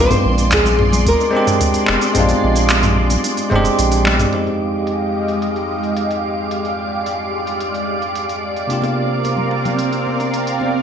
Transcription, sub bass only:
Already playing: A#1
0.25 A#1
1.07 G#1
1.89 F1
2.17 A#1
2.44 A#1
3.52 F1
3.79 A#1

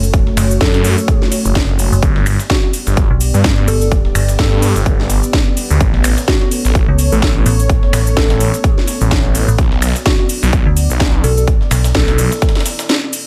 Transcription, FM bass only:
Already playing: F#1
0.37 F#1
1.92 F#1
3.10 B1
3.68 G1
4.15 G1
6.88 C#2
7.46 A1
7.93 A1
9.48 A1
10.66 D2
11.24 B1
11.71 B1

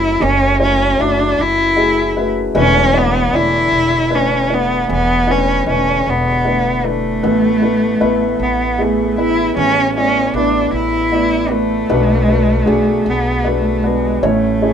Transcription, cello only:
Already playing: E4
0.23 C#4
0.63 C#4
1.01 D4
1.41 E4
2.58 C#4
2.97 B3
3.36 E4
4.15 C#4
4.54 B3
4.93 B3
5.31 C#4
5.70 C#4
6.09 B3
6.87 A3
8.43 B3
8.82 A3
9.19 E4
9.58 C#4
9.97 C#4
10.37 D4
10.74 E4
11.51 A3
13.09 B3
13.48 A3
13.87 G#3
14.26 A3

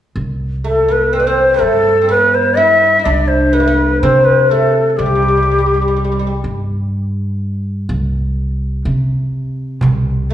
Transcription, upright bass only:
0.16 C2
1.61 G2
3.06 C2
4.03 C3
4.99 C2
6.44 G2
7.89 C2
8.85 C3
9.82 C2

